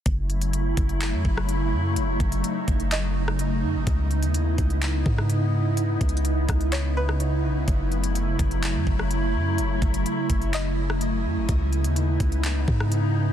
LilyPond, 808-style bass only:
\new Staff \with { instrumentName = "808-style bass" } { \clef bass \time 4/4 \key fis \dorian \tempo 4 = 126 fis,,4. fis,,8. fis,16 fis,,4 fis,8 | fis,,8 fis,,8 r8 fis,,2 fis,16 fis,,16 | cis,8. dis,8. cis,4 gis,4.~ | gis,8 cis,4 cis,2 b,,16 cis,16 |
fis,,4. fis,,8. fis,16 fis,,4 fis,8 | fis,,8 fis,,8 r8 fis,,2 fis,16 fis,,16 | cis,8. dis,8. cis,4 gis,4. | }